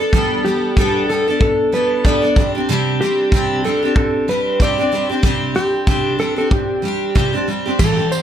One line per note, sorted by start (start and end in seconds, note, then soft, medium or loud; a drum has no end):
0.00 0.13 B3 soft
0.00 0.13 D4 soft
0.00 0.13 A4 soft
0.13 0.44 G3 medium
0.13 0.45 B3 medium
0.13 0.45 D4 medium
0.13 0.45 A4 medium
0.13 kick medium
0.45 0.76 G3 soft
0.45 0.77 B3 medium
0.45 0.77 D4 medium
0.45 1.09 G4 medium
0.45 0.78 A4 medium
0.77 1.08 G3 medium
0.77 1.09 B3 medium
0.77 1.09 D4 medium
0.77 1.09 A4 medium
0.77 kick loud
1.09 1.26 G3 soft
1.09 1.27 B3 medium
1.09 1.27 D4 medium
1.09 1.41 A4 medium
1.09 1.26 A4 medium
1.28 1.72 B3 soft
1.28 1.73 D4 soft
1.28 1.73 A4 soft
1.41 1.74 A4 medium
1.41 kick loud
1.72 2.04 G3 medium
1.72 2.04 B3 medium
1.72 2.05 D4 medium
1.72 2.05 A4 medium
1.72 2.06 B4 medium
2.05 2.22 G3 medium
2.05 2.22 B3 medium
2.05 2.22 D4 medium
2.05 2.21 A4 medium
2.05 2.51 D5 medium
2.05 kick medium
2.22 2.37 B3 soft
2.22 2.37 D4 soft
2.22 2.36 A4 soft
2.36 2.54 G3 soft
2.36 2.54 C4 medium
2.36 2.54 D4 medium
2.36 2.54 G4 medium
2.36 kick medium
2.55 2.69 C4 soft
2.55 2.69 D4 soft
2.55 2.68 G4 soft
2.69 3.00 C3 medium
2.69 3.00 G3 medium
2.69 3.01 C4 medium
2.69 3.01 D4 medium
2.69 3.01 G4 medium
3.01 3.32 G3 medium
3.01 3.33 C4 medium
3.01 3.33 D4 medium
3.01 3.65 G4 medium
3.01 3.33 G4 medium
3.32 3.64 C3 medium
3.32 3.63 G3 medium
3.32 3.64 C4 medium
3.32 3.65 D4 medium
3.32 3.65 G4 medium
3.32 kick loud
3.64 3.82 G3 medium
3.64 3.82 C4 medium
3.64 3.82 D4 medium
3.64 3.81 G4 medium
3.64 3.96 A4 medium
3.83 4.28 C4 soft
3.83 4.29 D4 soft
3.83 4.28 G4 soft
3.96 4.29 A4 medium
3.96 kick loud
4.28 4.59 G3 medium
4.28 4.60 C4 medium
4.28 4.60 D4 medium
4.28 4.60 G4 medium
4.28 4.61 B4 medium
4.60 4.77 C3 medium
4.60 4.78 G3 medium
4.60 4.78 C4 medium
4.60 4.78 D4 medium
4.60 4.77 G4 medium
4.60 5.07 D5 medium
4.60 kick medium
4.78 4.91 C4 soft
4.78 4.92 D4 soft
4.78 4.92 G4 soft
4.92 5.09 G3 soft
4.92 5.10 C4 medium
4.92 5.09 D4 medium
4.92 5.08 G4 medium
5.09 5.23 C4 soft
5.09 5.23 D4 soft
5.09 5.24 G4 soft
5.23 5.55 C3 medium
5.23 5.53 G3 medium
5.23 5.55 C4 medium
5.23 5.55 D4 medium
5.23 5.56 G4 medium
5.23 kick medium
5.55 5.86 G3 soft
5.55 5.87 C4 medium
5.55 5.87 D4 medium
5.55 6.19 G4 medium
5.55 5.87 G4 medium
5.87 6.19 C3 medium
5.87 6.17 G3 medium
5.87 6.18 C4 medium
5.87 6.19 D4 medium
5.87 6.20 G4 medium
5.87 kick loud
6.19 6.37 G3 soft
6.19 6.37 C4 soft
6.19 6.37 D4 medium
6.19 6.35 G4 medium
6.19 6.37 A4 medium
6.36 6.82 C4 soft
6.36 6.83 D4 soft
6.36 6.83 G4 soft
6.36 6.52 A4 medium
6.51 7.48 G4 medium
6.51 kick loud
6.82 7.14 G3 medium
6.82 7.15 C4 medium
6.82 7.15 D4 medium
6.82 7.16 G4 medium
7.15 7.33 C3 medium
7.15 7.33 G3 medium
7.15 7.33 C4 medium
7.15 7.33 D4 medium
7.15 7.32 G4 medium
7.15 kick medium
7.33 7.47 C4 soft
7.33 7.48 D4 soft
7.33 7.47 G4 soft
7.47 7.65 G3 soft
7.47 7.65 C4 medium
7.47 7.66 D4 medium
7.47 7.64 G4 medium
7.66 7.79 C4 soft
7.66 7.80 D4 soft
7.66 7.80 G4 medium
7.79 7.97 A2 medium
7.79 7.97 E3 medium
7.79 7.97 G3 medium
7.79 7.97 C4 medium
7.79 7.96 G4 medium
7.79 8.12 A4 medium
7.79 kick loud
7.79 crash medium
7.79 tambourine soft
7.97 8.22 G3 soft
7.97 8.22 C4 soft
7.97 8.22 G4 soft
8.12 8.22 C5 loud
8.12 tambourine soft